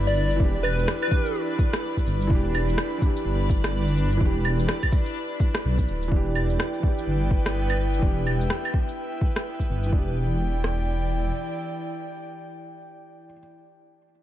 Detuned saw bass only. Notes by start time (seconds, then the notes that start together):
Already playing: G1
0.40 E1
2.07 G1
2.31 E1
3.25 G1
4.21 E1
5.65 B1
5.88 D1
6.12 E1
7.07 G1
8.03 E1
9.69 G1
9.92 E1